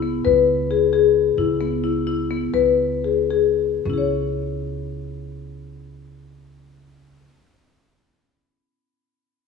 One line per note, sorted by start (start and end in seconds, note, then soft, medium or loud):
0.00 0.22 C#2 medium
0.00 0.18 B3 medium
0.25 1.36 C#2 medium
0.25 0.57 B4 medium
0.71 0.86 G#4 medium
0.93 1.24 G#4 medium
1.37 2.51 C#2 medium
1.37 1.54 E4 medium
1.61 1.77 B3 medium
1.84 2.00 E4 medium
2.07 2.23 E4 medium
2.31 2.47 B3 medium
2.53 3.83 C#2 medium
2.53 2.89 B4 medium
3.04 3.23 G#4 medium
3.30 3.70 G#4 medium
3.85 7.28 C#2 medium
3.85 7.29 C#4 soft
3.90 7.33 E4 soft
3.90 7.37 G#4 soft
3.98 7.41 C#5 soft